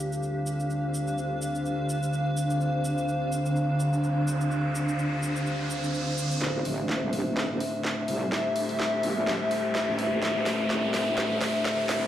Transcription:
Already playing: D3 D4 G4 A4 C5 F5
0.12 shaker
0.23 shaker
0.47 shaker
0.60 shaker
0.70 shaker
0.94 shaker
1.08 shaker
1.18 shaker
1.42 shaker
1.55 shaker
1.66 shaker
1.89 shaker
2.03 shaker
2.13 shaker
2.37 shaker
2.50 shaker
2.60 riser, shaker
2.85 shaker
2.98 shaker
3.08 shaker
3.32 shaker
3.46 shaker
3.56 shaker
3.80 shaker
3.93 shaker
4.04 shaker
4.28 shaker
4.41 shaker
4.51 shaker
4.75 shaker
4.89 shaker
4.99 shaker
5.23 shaker
5.36 shaker
5.47 shaker
5.70 shaker
5.84 shaker
5.94 shaker
6.18 shaker
6.31 shaker
6.41 A1 A3 A4 C5 E5, snare, riser
6.65 A1, open hi-hat
6.87 G4 E5, snare
7.02 C2
7.13 open hi-hat
7.26 A1
7.37 snare
7.60 open hi-hat
7.84 snare
8.08 C2, open hi-hat
8.32 snare
8.56 open hi-hat
8.69 open hi-hat
8.79 snare
9.03 A#1, open hi-hat
9.27 snare
9.51 open hi-hat
9.75 snare
9.88 A1
9.99 open hi-hat
10.22 A1, snare
10.46 A1, snare, open hi-hat
10.70 snare
10.83 C2
10.94 snare, open hi-hat
11.07 A1
11.18 snare
11.41 snare, open hi-hat
11.65 snare
11.89 C2, snare, open hi-hat

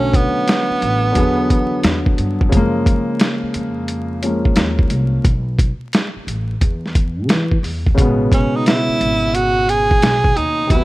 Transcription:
Already playing: B1 D3 F#3 A3 C#4
0.14 B3, kick, closed hi-hat
0.48 snare, closed hi-hat
0.70 muted upright bass stroke
0.82 A1, closed hi-hat
1.11 D3 F#3, closed hi-hat
1.16 E2 B3 G#4, kick
1.50 kick, closed hi-hat
1.84 E2, snare, closed hi-hat
2.06 kick
2.18 G2, closed hi-hat
2.41 kick
2.49 F#2 C#3 F3, kick, closed hi-hat
2.54 G#3 A#3
2.86 kick, closed hi-hat
3.20 snare, closed hi-hat
3.43 muted upright bass stroke
3.54 F2, closed hi-hat
3.88 closed hi-hat
4.22 F3 G#3 A#3 C#4, closed hi-hat
4.45 kick
4.56 D#2, snare, closed hi-hat
4.79 kick
4.90 C2, closed hi-hat
5.24 B1, kick, closed hi-hat
5.59 kick, closed hi-hat
5.93 snare, closed hi-hat
6.16 muted upright bass stroke
6.27 A1, closed hi-hat
6.61 E2, kick, closed hi-hat
6.86 snare
6.95 kick, closed hi-hat
7.28 E3, snare, closed hi-hat
7.52 kick
7.63 E2, open hi-hat
7.86 kick
7.95 A1 B2 C#3, kick, closed hi-hat
7.99 G#3 B3
8.32 C#4, kick, closed hi-hat
8.56 D#4
8.66 E4, snare, closed hi-hat
8.89 muted upright bass stroke
9.00 G#1, closed hi-hat
9.35 F#4, closed hi-hat
9.69 G#4, closed hi-hat
9.91 kick
10.02 B1, snare, closed hi-hat
10.24 kick
10.37 D#2 D#4, closed hi-hat
10.67 D2 C3 E3 E4, kick, closed hi-hat
10.72 B3 F#4

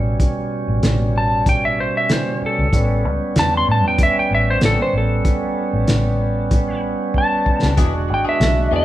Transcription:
Already playing: A1 B2 G3 C#4
0.20 kick, closed hi-hat
0.68 A1
0.83 A1, snare, closed hi-hat
1.18 A5
1.46 G5, kick, closed hi-hat
1.65 E5
1.80 C5
1.97 E5
2.09 C5, snare, closed hi-hat
2.42 muted fingered electric bass stroke
2.46 A4
2.59 C#2
2.73 A1 G3 B3 C#4, kick, closed hi-hat
3.05 C#2
3.36 E2 A5, snare, closed hi-hat
3.57 C6
3.68 A2 A5
3.84 E2 G5
3.98 kick, closed hi-hat
4.03 E5
4.19 G5
4.31 A1 E5
4.50 C5
4.61 A1, snare, closed hi-hat
4.65 A4
4.82 C5
4.93 A1
4.98 A4
5.25 kick, closed hi-hat
5.73 A1
5.88 A1, snare, closed hi-hat
6.51 kick, closed hi-hat
7.14 A5, kick
7.46 muted fingered electric bass stroke, kick
7.63 C#2, snare
7.77 E1 E3 G#3 B3 D4 F#4 G#4, kick, closed hi-hat
7.94 muted clean electric guitar stroke
8.08 G#1, muted clean electric guitar stroke
8.14 G5
8.25 B3 D4 G#4
8.29 E5
8.40 B1, muted clean electric guitar stroke, snare, closed hi-hat
8.71 E2 E3 B3 D4 G#4
8.76 E5

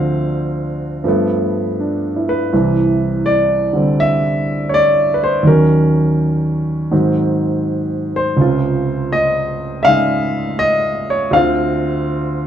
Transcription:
Already playing: D2 D3 F3 C4 F5
1.04 G2 F3 A3
1.08 B3
1.80 D4
2.16 E4
2.29 B4
2.53 C2 C3 E3
3.26 D5
3.73 D3 G3 C4
4.00 E5
4.69 C#5
4.74 D5
5.14 B4
5.24 C5
5.43 D#2 D#3 F#3
5.47 C#4 A#4
6.91 G#2 D#3 F#3 C4
8.16 C5
8.37 C#2 C3 C#3
8.42 F4
9.13 D#5
9.83 C#3 G#3 E5 F5
9.87 D#4
10.59 D#5
11.10 C#5
11.31 D2 D3 C4 F5
11.36 F4

